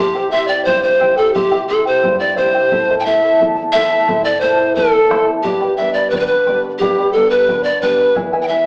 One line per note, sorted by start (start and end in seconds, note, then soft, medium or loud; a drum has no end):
0.00 0.65 C3 medium
0.00 0.14 E4 medium
0.00 0.15 G4 medium
0.00 0.30 G4 medium
0.00 0.15 C5 medium
0.00 0.15 E5 medium
0.00 0.14 G5 medium
0.15 0.32 E4 medium
0.15 0.33 G4 medium
0.15 0.32 C5 medium
0.15 0.31 E5 medium
0.15 0.32 G5 medium
0.31 0.88 C4 soft
0.31 0.49 E4 medium
0.31 0.88 E4 soft
0.31 0.88 G4 medium
0.31 0.48 C5 medium
0.31 0.49 E5 medium
0.31 0.50 E5 medium
0.31 0.48 G5 medium
0.48 0.65 E4 soft
0.48 0.65 C5 soft
0.48 0.66 D5 medium
0.48 0.66 G5 soft
0.65 1.33 G2 medium
0.65 0.83 E4 medium
0.65 0.83 C5 medium
0.65 0.84 E5 medium
0.65 0.82 G5 medium
0.65 bombo low medium
0.83 0.99 E4 soft
0.83 1.19 C5 medium
0.83 0.99 C5 soft
0.83 1.00 G5 soft
1.00 1.56 C4 soft
1.00 1.17 E4 medium
1.00 1.56 E4 soft
1.00 1.18 G4 medium
1.00 1.57 G4 medium
1.00 1.17 C5 medium
1.00 1.18 E5 medium
1.00 1.16 G5 medium
1.00 bombo low medium
1.17 1.34 E4 soft
1.17 1.34 A4 medium
1.17 1.34 C5 soft
1.17 1.34 G5 soft
1.34 2.02 C3 medium
1.34 1.50 E4 medium
1.34 1.66 G4 medium
1.34 1.51 G4 medium
1.34 1.50 C5 medium
1.34 1.51 E5 medium
1.34 1.50 G5 medium
1.34 bombo low medium
1.51 1.68 E4 medium
1.51 1.69 G4 soft
1.51 1.69 C5 medium
1.51 1.67 E5 medium
1.51 1.69 G5 medium
1.68 2.25 C4 soft
1.68 1.85 E4 medium
1.68 2.25 E4 soft
1.68 2.25 G4 medium
1.68 1.85 A4 medium
1.68 1.85 C5 medium
1.68 1.86 E5 medium
1.68 1.84 G5 medium
1.85 2.02 E4 soft
1.85 2.02 C5 soft
1.85 2.18 C5 medium
1.85 2.03 G5 soft
2.02 2.71 G2 medium
2.02 2.20 E4 medium
2.02 2.19 C5 medium
2.02 2.20 E5 soft
2.02 2.18 G5 medium
2.02 bombo low medium
2.19 2.35 E4 soft
2.19 2.36 C5 soft
2.19 2.36 D5 medium
2.19 2.36 G5 soft
2.36 2.65 C4 soft
2.36 2.54 E4 medium
2.36 2.65 E4 soft
2.36 2.54 G4 medium
2.36 2.65 G4 medium
2.36 2.94 C5 medium
2.36 2.54 C5 medium
2.36 2.54 E5 medium
2.36 2.53 G5 medium
2.36 bombo low soft
2.54 2.71 E4 soft
2.54 2.71 C5 soft
2.54 2.72 G5 soft
2.72 3.38 A2 medium
2.72 2.89 E4 medium
2.72 2.89 A4 medium
2.72 2.89 C5 medium
2.72 2.89 E5 medium
2.72 2.88 A5 medium
2.72 bombo low medium
2.90 3.05 E4 medium
2.90 3.05 A4 medium
2.90 3.07 C5 medium
2.90 3.05 E5 medium
2.90 3.06 A5 medium
3.00 3.07 G5 medium
3.05 3.61 A3 soft
3.05 3.61 C4 soft
3.05 3.23 E4 medium
3.05 3.61 E4 medium
3.05 3.22 A4 medium
3.05 3.42 E5 loud
3.05 3.23 E5 medium
3.05 3.21 A5 medium
3.22 3.39 E4 soft
3.22 3.39 A4 soft
3.22 3.39 A5 soft
3.39 4.07 E2 medium
3.39 3.56 E4 medium
3.39 3.56 A4 medium
3.39 3.57 E5 medium
3.39 3.55 A5 medium
3.39 bombo low medium
3.56 3.73 E4 soft
3.56 3.74 A4 soft
3.56 3.74 A5 soft
3.72 4.30 A3 soft
3.72 4.30 C4 soft
3.72 3.91 E4 medium
3.72 3.90 A4 medium
3.72 3.91 C5 medium
3.72 4.26 E5 medium
3.72 3.91 E5 medium
3.72 3.90 A5 medium
3.72 bombo low medium
3.77 4.30 E4 medium
3.91 4.07 E4 soft
3.91 4.07 A4 soft
3.91 4.08 A5 soft
4.08 4.75 A2 medium
4.08 4.24 E4 medium
4.08 4.23 A4 medium
4.08 4.24 C5 medium
4.08 4.24 E5 medium
4.08 4.23 A5 medium
4.08 bombo low medium
4.24 4.42 E4 medium
4.24 4.42 A4 medium
4.24 4.43 C5 medium
4.24 4.42 D5 medium
4.24 4.41 E5 medium
4.24 4.42 A5 medium
4.41 4.97 A3 soft
4.41 4.97 C4 soft
4.41 4.59 E4 soft
4.41 4.98 E4 soft
4.41 4.58 A4 medium
4.41 4.77 C5 medium
4.41 4.59 E5 medium
4.41 4.57 A5 medium
4.59 4.75 A4 soft
4.59 4.76 A5 soft
4.75 5.43 E2 medium
4.75 4.93 E4 medium
4.75 5.27 A4 medium
4.75 4.92 A4 medium
4.75 4.93 E5 soft
4.75 4.92 A5 medium
4.75 bombo low medium
4.93 5.09 E4 soft
4.93 5.09 A4 soft
4.93 5.10 A5 soft
5.10 5.38 A3 soft
5.10 5.39 C4 soft
5.10 5.27 E4 medium
5.10 5.39 E4 medium
5.10 5.26 A4 medium
5.10 5.27 C5 medium
5.10 5.27 E5 medium
5.10 5.26 A5 medium
5.10 bombo rim soft
5.10 bombo low soft
5.27 5.44 E4 soft
5.27 5.45 A4 soft
5.27 5.44 A5 soft
5.43 6.11 G2 medium
5.43 5.75 G4 medium
5.43 5.61 G4 medium
5.43 5.60 B4 medium
5.43 5.59 D5 medium
5.43 5.60 G5 medium
5.43 5.59 B5 medium
5.43 bombo low medium
5.61 5.79 G4 soft
5.61 5.78 B4 soft
5.61 5.78 D5 medium
5.61 5.77 G5 medium
5.61 5.78 B5 medium
5.77 6.33 G3 soft
5.77 6.34 B3 soft
5.77 6.34 D4 soft
5.77 5.96 B4 medium
5.77 5.95 D5 medium
5.77 5.93 E5 medium
5.77 5.95 G5 medium
5.77 5.95 B5 medium
5.94 6.12 B4 soft
5.94 6.12 D5 medium
5.94 6.13 D5 soft
5.94 6.13 B5 medium
6.10 6.79 D3 medium
6.10 6.18 B4 medium
6.10 6.30 B4 medium
6.10 6.30 G5 medium
6.10 bombo low medium
6.14 6.26 B4 medium
6.14 6.30 D5 medium
6.14 6.20 D5 medium
6.14 6.29 B5 medium
6.26 6.59 B4 medium
6.26 6.46 B5 soft
6.31 6.46 B4 soft
6.31 6.46 D5 soft
6.46 7.02 G3 soft
6.46 7.01 B3 soft
6.46 7.02 D4 medium
6.46 6.63 G4 medium
6.46 6.64 B4 medium
6.46 6.64 D5 medium
6.46 6.64 G5 medium
6.46 6.63 B5 medium
6.46 bombo low soft
6.64 6.81 B4 soft
6.64 6.81 D5 soft
6.64 6.81 B5 soft
6.78 7.47 G2 medium
6.78 7.14 G4 medium
6.78 6.98 G4 medium
6.78 6.98 B4 medium
6.78 6.97 D5 medium
6.78 6.97 G5 medium
6.78 6.97 B5 medium
6.78 bombo low medium
6.98 7.15 G4 soft
6.98 7.14 B4 medium
6.98 7.15 D5 medium
6.98 7.14 G5 soft
6.98 7.15 B5 medium
7.13 7.69 G3 soft
7.13 7.69 B3 soft
7.13 7.69 D4 soft
7.13 7.30 A4 medium
7.13 7.31 B4 medium
7.13 7.31 D5 medium
7.13 7.32 G5 medium
7.13 7.30 B5 medium
7.30 7.65 B4 medium
7.30 7.48 B4 soft
7.30 7.48 D5 soft
7.30 7.48 B5 soft
7.48 8.14 D3 medium
7.48 7.66 B4 medium
7.48 7.65 D5 medium
7.48 7.66 G5 medium
7.48 7.64 B5 medium
7.48 bombo low medium
7.63 7.82 B4 soft
7.63 7.81 D5 medium
7.63 7.82 D5 soft
7.63 7.82 B5 medium
7.82 8.10 G3 soft
7.82 8.09 B3 soft
7.82 8.10 D4 soft
7.82 7.99 G4 medium
7.82 8.15 B4 medium
7.82 7.99 B4 medium
7.82 7.98 D5 medium
7.82 7.99 G5 medium
7.82 7.97 B5 medium
7.82 bombo low medium
7.99 8.15 B4 soft
7.99 8.16 D5 soft
7.99 8.16 B5 soft
8.15 8.66 E2 medium
8.15 8.32 E4 medium
8.15 8.33 G#4 medium
8.15 8.32 B4 medium
8.15 8.32 E5 medium
8.15 8.32 G#5 medium
8.15 bombo low medium
8.33 8.50 E4 medium
8.33 8.50 G#4 soft
8.33 8.50 B4 medium
8.33 8.49 E5 medium
8.33 8.50 G#5 medium
8.42 8.49 G5 medium
8.47 8.66 G#3 soft
8.47 8.66 B3 soft
8.47 8.66 E4 soft
8.47 8.66 E4 medium
8.47 8.66 B4 medium
8.47 8.66 E5 medium
8.52 8.66 G#5 medium